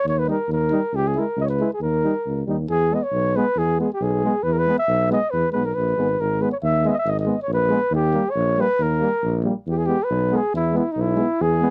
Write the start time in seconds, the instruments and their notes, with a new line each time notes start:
0.05 tuba D#2, flugelhorn C#5
0.19 flugelhorn B4
0.27 euphonium G3, trombone D#4, flugelhorn A#4
0.48 tuba D#2
0.52 flugelhorn A#4
0.71 euphonium G3, trombone D#4
0.92 tuba C#2, flugelhorn G4
1.07 flugelhorn G#4
1.15 euphonium G#3, trombone E4
1.19 flugelhorn A#4
1.37 tuba C#2, flugelhorn D#5
1.44 flugelhorn C#5
1.49 flugelhorn B4
1.59 euphonium G#3, trombone E4
1.73 flugelhorn G#4
1.81 tuba D#2, flugelhorn A#4
2.04 euphonium G3, trombone D#4
2.27 tuba C#2
2.47 tuba D#2, euphonium G3, trombone D#4
2.69 tuba E2, flugelhorn G#4
2.91 euphonium G#3, trombone B3, flugelhorn D#5
3.03 flugelhorn C#5
3.13 tuba B1
3.36 euphonium G#3, trombone B3, flugelhorn B4
3.56 tuba E2, flugelhorn G#4
3.79 euphonium G#3, trombone B3, flugelhorn G#4
3.93 flugelhorn G4
4.01 tuba B1, flugelhorn G#4
4.24 euphonium G#3, trombone B3
4.43 tuba E2, flugelhorn B4
4.53 flugelhorn A#4
4.58 flugelhorn B4
4.66 euphonium G#3, trombone B3
4.78 flugelhorn E5
4.88 tuba B1
5.10 euphonium G#3, trombone B3, flugelhorn D#5
5.30 tuba E2, flugelhorn B4
5.52 tuba B1, euphonium G#3, trombone B3, flugelhorn B4
5.65 flugelhorn A#4
5.74 tuba A#1, flugelhorn B4
5.97 tuba G#1, euphonium G#3, trombone B3
6.20 tuba G#1, flugelhorn A#4
6.40 euphonium G#3, trombone B3, flugelhorn B4
6.52 flugelhorn C#5
6.63 tuba D#2, flugelhorn E5
6.84 euphonium G#3, trombone B3, flugelhorn D#5
6.89 flugelhorn D#5 E5
6.98 flugelhorn E5
7.05 tuba G#1, flugelhorn D#5
7.19 flugelhorn D#5
7.25 euphonium G#3, trombone B3
7.42 flugelhorn C#5
7.48 tuba A#1
7.54 flugelhorn B4
7.69 euphonium G#3, trombone B3
7.91 tuba D#2
7.95 flugelhorn G4
8.14 euphonium G3, trombone A#3
8.31 flugelhorn C#5
8.35 tuba A#1
8.57 euphonium G3, trombone A#3, flugelhorn B4
8.79 tuba D#2, flugelhorn A#4
9.00 euphonium G3, trombone A#3
9.23 tuba A#1
9.43 euphonium G3, trombone A#3
9.67 tuba E2, flugelhorn G4
9.78 flugelhorn G#4
9.86 euphonium G#3, trombone B3, flugelhorn G4
10.04 flugelhorn B4
10.10 tuba B1
10.31 euphonium G#3, trombone B3
10.36 flugelhorn G#4
10.54 tuba E2, flugelhorn E4
10.72 euphonium G#3, trombone B3
10.78 flugelhorn E4
10.92 flugelhorn D#4
10.96 tuba B1
11.01 flugelhorn E4
11.14 euphonium G#3
11.19 trombone B3
11.40 tuba E2, flugelhorn G#4
11.61 euphonium G#3, trombone B3